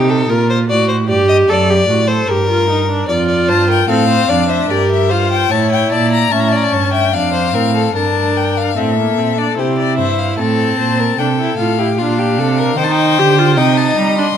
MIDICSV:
0, 0, Header, 1, 5, 480
1, 0, Start_track
1, 0, Key_signature, -2, "minor"
1, 0, Tempo, 801068
1, 412, Time_signature, 3, 2, 24, 8
1, 2334, Tempo, 815217
1, 5214, Tempo, 800000
1, 8567, End_track
2, 0, Start_track
2, 0, Title_t, "Violin"
2, 0, Program_c, 0, 40
2, 2092, Note_on_c, 0, 81, 79
2, 2204, Note_off_c, 0, 81, 0
2, 2218, Note_on_c, 0, 79, 83
2, 2333, Note_off_c, 0, 79, 0
2, 2336, Note_on_c, 0, 77, 89
2, 2688, Note_on_c, 0, 76, 84
2, 2697, Note_off_c, 0, 77, 0
2, 2812, Note_on_c, 0, 74, 77
2, 2820, Note_off_c, 0, 76, 0
2, 2931, Note_off_c, 0, 74, 0
2, 2936, Note_on_c, 0, 76, 75
2, 3049, Note_on_c, 0, 77, 77
2, 3058, Note_off_c, 0, 76, 0
2, 3170, Note_off_c, 0, 77, 0
2, 3172, Note_on_c, 0, 79, 87
2, 3286, Note_on_c, 0, 81, 83
2, 3295, Note_off_c, 0, 79, 0
2, 3407, Note_off_c, 0, 81, 0
2, 3409, Note_on_c, 0, 79, 74
2, 3523, Note_off_c, 0, 79, 0
2, 3526, Note_on_c, 0, 81, 75
2, 3643, Note_off_c, 0, 81, 0
2, 3646, Note_on_c, 0, 82, 90
2, 3760, Note_on_c, 0, 81, 68
2, 3769, Note_off_c, 0, 82, 0
2, 3810, Note_on_c, 0, 82, 67
2, 3819, Note_off_c, 0, 81, 0
2, 3858, Note_on_c, 0, 81, 67
2, 3867, Note_off_c, 0, 82, 0
2, 3904, Note_on_c, 0, 82, 61
2, 3913, Note_off_c, 0, 81, 0
2, 3950, Note_on_c, 0, 81, 75
2, 3959, Note_off_c, 0, 82, 0
2, 4119, Note_off_c, 0, 81, 0
2, 4122, Note_on_c, 0, 79, 79
2, 4242, Note_on_c, 0, 77, 83
2, 4250, Note_off_c, 0, 79, 0
2, 4724, Note_off_c, 0, 77, 0
2, 4727, Note_on_c, 0, 81, 70
2, 4972, Note_on_c, 0, 79, 64
2, 4980, Note_off_c, 0, 81, 0
2, 5091, Note_on_c, 0, 77, 71
2, 5100, Note_off_c, 0, 79, 0
2, 5202, Note_on_c, 0, 76, 71
2, 5210, Note_off_c, 0, 77, 0
2, 5571, Note_on_c, 0, 74, 69
2, 5580, Note_off_c, 0, 76, 0
2, 5684, Note_off_c, 0, 74, 0
2, 5688, Note_on_c, 0, 72, 54
2, 5806, Note_off_c, 0, 72, 0
2, 5810, Note_on_c, 0, 74, 68
2, 5926, Note_off_c, 0, 74, 0
2, 5930, Note_on_c, 0, 76, 66
2, 6057, Note_on_c, 0, 77, 60
2, 6066, Note_off_c, 0, 76, 0
2, 6173, Note_off_c, 0, 77, 0
2, 6177, Note_on_c, 0, 81, 76
2, 6655, Note_on_c, 0, 79, 61
2, 6664, Note_off_c, 0, 81, 0
2, 6883, Note_off_c, 0, 79, 0
2, 6887, Note_on_c, 0, 77, 63
2, 7124, Note_off_c, 0, 77, 0
2, 7127, Note_on_c, 0, 77, 69
2, 7605, Note_on_c, 0, 79, 86
2, 7614, Note_off_c, 0, 77, 0
2, 7644, Note_on_c, 0, 81, 66
2, 7653, Note_off_c, 0, 79, 0
2, 7692, Note_on_c, 0, 79, 92
2, 7701, Note_off_c, 0, 81, 0
2, 8075, Note_off_c, 0, 79, 0
2, 8079, Note_on_c, 0, 79, 76
2, 8205, Note_on_c, 0, 81, 65
2, 8214, Note_off_c, 0, 79, 0
2, 8326, Note_on_c, 0, 82, 66
2, 8335, Note_off_c, 0, 81, 0
2, 8444, Note_off_c, 0, 82, 0
2, 8448, Note_on_c, 0, 84, 75
2, 8567, Note_off_c, 0, 84, 0
2, 8567, End_track
3, 0, Start_track
3, 0, Title_t, "Violin"
3, 0, Program_c, 1, 40
3, 0, Note_on_c, 1, 67, 86
3, 58, Note_on_c, 1, 69, 87
3, 67, Note_off_c, 1, 67, 0
3, 177, Note_on_c, 1, 70, 81
3, 186, Note_off_c, 1, 69, 0
3, 295, Note_off_c, 1, 70, 0
3, 299, Note_on_c, 1, 72, 84
3, 345, Note_off_c, 1, 72, 0
3, 418, Note_on_c, 1, 74, 90
3, 525, Note_off_c, 1, 74, 0
3, 529, Note_on_c, 1, 72, 71
3, 577, Note_off_c, 1, 72, 0
3, 648, Note_on_c, 1, 74, 79
3, 766, Note_off_c, 1, 74, 0
3, 771, Note_on_c, 1, 75, 94
3, 819, Note_off_c, 1, 75, 0
3, 891, Note_on_c, 1, 74, 91
3, 1243, Note_on_c, 1, 72, 83
3, 1252, Note_off_c, 1, 74, 0
3, 1366, Note_on_c, 1, 70, 100
3, 1375, Note_off_c, 1, 72, 0
3, 1844, Note_off_c, 1, 70, 0
3, 1848, Note_on_c, 1, 74, 74
3, 1962, Note_off_c, 1, 74, 0
3, 1965, Note_on_c, 1, 74, 66
3, 2087, Note_on_c, 1, 72, 65
3, 2096, Note_off_c, 1, 74, 0
3, 2206, Note_on_c, 1, 70, 73
3, 2215, Note_off_c, 1, 72, 0
3, 2322, Note_off_c, 1, 70, 0
3, 2325, Note_on_c, 1, 69, 67
3, 2438, Note_off_c, 1, 69, 0
3, 2442, Note_on_c, 1, 72, 77
3, 2565, Note_on_c, 1, 74, 74
3, 2574, Note_off_c, 1, 72, 0
3, 2679, Note_off_c, 1, 74, 0
3, 2683, Note_on_c, 1, 72, 65
3, 2800, Note_off_c, 1, 72, 0
3, 2803, Note_on_c, 1, 70, 71
3, 3043, Note_on_c, 1, 72, 73
3, 3052, Note_off_c, 1, 70, 0
3, 3283, Note_on_c, 1, 73, 77
3, 3292, Note_off_c, 1, 72, 0
3, 3527, Note_on_c, 1, 74, 67
3, 3536, Note_off_c, 1, 73, 0
3, 3757, Note_on_c, 1, 76, 67
3, 3766, Note_off_c, 1, 74, 0
3, 3880, Note_on_c, 1, 74, 77
3, 3889, Note_off_c, 1, 76, 0
3, 3999, Note_on_c, 1, 73, 66
3, 4008, Note_off_c, 1, 74, 0
3, 4115, Note_on_c, 1, 76, 62
3, 4124, Note_off_c, 1, 73, 0
3, 4240, Note_off_c, 1, 76, 0
3, 4244, Note_on_c, 1, 74, 71
3, 4355, Note_off_c, 1, 74, 0
3, 4359, Note_on_c, 1, 72, 71
3, 4481, Note_on_c, 1, 70, 64
3, 4490, Note_off_c, 1, 72, 0
3, 4601, Note_off_c, 1, 70, 0
3, 4605, Note_on_c, 1, 69, 72
3, 4723, Note_off_c, 1, 69, 0
3, 4726, Note_on_c, 1, 70, 63
3, 5186, Note_off_c, 1, 70, 0
3, 5209, Note_on_c, 1, 69, 59
3, 5694, Note_on_c, 1, 67, 61
3, 5703, Note_off_c, 1, 69, 0
3, 5932, Note_off_c, 1, 67, 0
3, 5935, Note_on_c, 1, 72, 60
3, 6171, Note_off_c, 1, 72, 0
3, 6178, Note_on_c, 1, 69, 77
3, 6409, Note_off_c, 1, 69, 0
3, 6413, Note_on_c, 1, 72, 65
3, 6538, Note_on_c, 1, 70, 74
3, 6547, Note_off_c, 1, 72, 0
3, 6649, Note_off_c, 1, 70, 0
3, 6653, Note_on_c, 1, 69, 68
3, 7014, Note_on_c, 1, 67, 69
3, 7023, Note_off_c, 1, 69, 0
3, 7133, Note_on_c, 1, 65, 77
3, 7142, Note_off_c, 1, 67, 0
3, 7255, Note_on_c, 1, 67, 74
3, 7264, Note_off_c, 1, 65, 0
3, 7376, Note_on_c, 1, 69, 76
3, 7385, Note_off_c, 1, 67, 0
3, 7496, Note_on_c, 1, 70, 81
3, 7505, Note_off_c, 1, 69, 0
3, 7611, Note_off_c, 1, 70, 0
3, 7614, Note_on_c, 1, 72, 76
3, 8085, Note_on_c, 1, 75, 79
3, 8094, Note_off_c, 1, 72, 0
3, 8567, Note_off_c, 1, 75, 0
3, 8567, End_track
4, 0, Start_track
4, 0, Title_t, "Viola"
4, 0, Program_c, 2, 41
4, 0, Note_on_c, 2, 63, 68
4, 178, Note_on_c, 2, 65, 63
4, 187, Note_off_c, 2, 63, 0
4, 415, Note_off_c, 2, 65, 0
4, 419, Note_on_c, 2, 66, 78
4, 649, Note_off_c, 2, 66, 0
4, 653, Note_on_c, 2, 67, 82
4, 895, Note_on_c, 2, 69, 75
4, 904, Note_off_c, 2, 67, 0
4, 1018, Note_on_c, 2, 67, 69
4, 1027, Note_off_c, 2, 69, 0
4, 1132, Note_off_c, 2, 67, 0
4, 1136, Note_on_c, 2, 66, 57
4, 1251, Note_off_c, 2, 66, 0
4, 1257, Note_on_c, 2, 69, 60
4, 1380, Note_on_c, 2, 67, 70
4, 1389, Note_off_c, 2, 69, 0
4, 1495, Note_off_c, 2, 67, 0
4, 1498, Note_on_c, 2, 65, 68
4, 1613, Note_off_c, 2, 65, 0
4, 1617, Note_on_c, 2, 63, 65
4, 1733, Note_off_c, 2, 63, 0
4, 1738, Note_on_c, 2, 62, 68
4, 1854, Note_off_c, 2, 62, 0
4, 1859, Note_on_c, 2, 65, 86
4, 2326, Note_off_c, 2, 65, 0
4, 2337, Note_on_c, 2, 60, 69
4, 2571, Note_on_c, 2, 62, 60
4, 2580, Note_off_c, 2, 60, 0
4, 2808, Note_on_c, 2, 67, 66
4, 2817, Note_off_c, 2, 62, 0
4, 3051, Note_on_c, 2, 65, 66
4, 3060, Note_off_c, 2, 67, 0
4, 3288, Note_off_c, 2, 65, 0
4, 3292, Note_on_c, 2, 64, 72
4, 3757, Note_off_c, 2, 64, 0
4, 3769, Note_on_c, 2, 61, 62
4, 4237, Note_off_c, 2, 61, 0
4, 4246, Note_on_c, 2, 62, 60
4, 4482, Note_off_c, 2, 62, 0
4, 4485, Note_on_c, 2, 60, 55
4, 4722, Note_off_c, 2, 60, 0
4, 4725, Note_on_c, 2, 62, 65
4, 5186, Note_off_c, 2, 62, 0
4, 5206, Note_on_c, 2, 60, 57
4, 5327, Note_off_c, 2, 60, 0
4, 5336, Note_on_c, 2, 58, 54
4, 5453, Note_on_c, 2, 60, 56
4, 5462, Note_off_c, 2, 58, 0
4, 5569, Note_off_c, 2, 60, 0
4, 5573, Note_on_c, 2, 62, 56
4, 5686, Note_off_c, 2, 62, 0
4, 5690, Note_on_c, 2, 64, 61
4, 6174, Note_on_c, 2, 60, 68
4, 6183, Note_off_c, 2, 64, 0
4, 6654, Note_off_c, 2, 60, 0
4, 6659, Note_on_c, 2, 62, 63
4, 6706, Note_off_c, 2, 62, 0
4, 6775, Note_on_c, 2, 64, 67
4, 6891, Note_off_c, 2, 64, 0
4, 6894, Note_on_c, 2, 65, 56
4, 7011, Note_off_c, 2, 65, 0
4, 7015, Note_on_c, 2, 64, 60
4, 7062, Note_off_c, 2, 64, 0
4, 7138, Note_on_c, 2, 62, 75
4, 7605, Note_off_c, 2, 62, 0
4, 7617, Note_on_c, 2, 63, 90
4, 7852, Note_on_c, 2, 67, 84
4, 7861, Note_off_c, 2, 63, 0
4, 7971, Note_on_c, 2, 65, 78
4, 7980, Note_off_c, 2, 67, 0
4, 8089, Note_on_c, 2, 63, 81
4, 8098, Note_off_c, 2, 65, 0
4, 8448, Note_off_c, 2, 63, 0
4, 8452, Note_on_c, 2, 62, 71
4, 8500, Note_off_c, 2, 62, 0
4, 8567, End_track
5, 0, Start_track
5, 0, Title_t, "Cello"
5, 0, Program_c, 3, 42
5, 0, Note_on_c, 3, 48, 76
5, 176, Note_off_c, 3, 48, 0
5, 179, Note_on_c, 3, 46, 72
5, 419, Note_on_c, 3, 45, 66
5, 428, Note_off_c, 3, 46, 0
5, 657, Note_on_c, 3, 43, 77
5, 666, Note_off_c, 3, 45, 0
5, 890, Note_off_c, 3, 43, 0
5, 894, Note_on_c, 3, 42, 81
5, 1127, Note_off_c, 3, 42, 0
5, 1132, Note_on_c, 3, 45, 67
5, 1367, Note_off_c, 3, 45, 0
5, 1372, Note_on_c, 3, 43, 67
5, 1844, Note_off_c, 3, 43, 0
5, 1852, Note_on_c, 3, 41, 68
5, 2093, Note_on_c, 3, 43, 79
5, 2102, Note_off_c, 3, 41, 0
5, 2326, Note_off_c, 3, 43, 0
5, 2330, Note_on_c, 3, 45, 74
5, 2563, Note_off_c, 3, 45, 0
5, 2569, Note_on_c, 3, 41, 64
5, 2804, Note_off_c, 3, 41, 0
5, 2809, Note_on_c, 3, 43, 71
5, 3279, Note_off_c, 3, 43, 0
5, 3285, Note_on_c, 3, 45, 61
5, 3520, Note_off_c, 3, 45, 0
5, 3523, Note_on_c, 3, 46, 75
5, 3759, Note_off_c, 3, 46, 0
5, 3761, Note_on_c, 3, 45, 74
5, 3998, Note_off_c, 3, 45, 0
5, 4000, Note_on_c, 3, 43, 60
5, 4243, Note_on_c, 3, 41, 62
5, 4252, Note_off_c, 3, 43, 0
5, 4480, Note_on_c, 3, 45, 65
5, 4489, Note_off_c, 3, 41, 0
5, 4718, Note_off_c, 3, 45, 0
5, 4721, Note_on_c, 3, 43, 54
5, 5184, Note_off_c, 3, 43, 0
5, 5206, Note_on_c, 3, 45, 62
5, 5444, Note_off_c, 3, 45, 0
5, 5449, Note_on_c, 3, 46, 52
5, 5686, Note_off_c, 3, 46, 0
5, 5693, Note_on_c, 3, 48, 62
5, 5929, Note_on_c, 3, 43, 59
5, 5938, Note_off_c, 3, 48, 0
5, 6171, Note_off_c, 3, 43, 0
5, 6175, Note_on_c, 3, 45, 59
5, 6410, Note_off_c, 3, 45, 0
5, 6416, Note_on_c, 3, 46, 64
5, 6650, Note_off_c, 3, 46, 0
5, 6656, Note_on_c, 3, 48, 64
5, 6890, Note_off_c, 3, 48, 0
5, 6893, Note_on_c, 3, 45, 60
5, 7134, Note_on_c, 3, 46, 66
5, 7143, Note_off_c, 3, 45, 0
5, 7371, Note_on_c, 3, 48, 75
5, 7380, Note_off_c, 3, 46, 0
5, 7602, Note_off_c, 3, 48, 0
5, 7605, Note_on_c, 3, 51, 71
5, 7847, Note_on_c, 3, 50, 80
5, 7856, Note_off_c, 3, 51, 0
5, 8085, Note_on_c, 3, 48, 83
5, 8094, Note_off_c, 3, 50, 0
5, 8322, Note_off_c, 3, 48, 0
5, 8325, Note_on_c, 3, 55, 71
5, 8566, Note_off_c, 3, 55, 0
5, 8567, End_track
0, 0, End_of_file